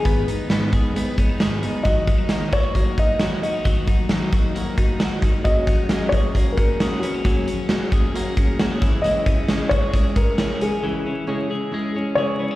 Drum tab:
HH |xxxxxxxx|xxxxxxxx|xxxxxxxx|xxxxxxxx|
SD |--o---o-|--o---o-|--o---o-|--o---o-|
BD |o--o-o--|oo-ooo--|oo-o-o-o|oo-ooo--|

HH |xxxxxxxx|xxxxxxxx|--------|
SD |--o---o-|--o---o-|--------|
BD |o--o-o-o|-o-ooo--|--------|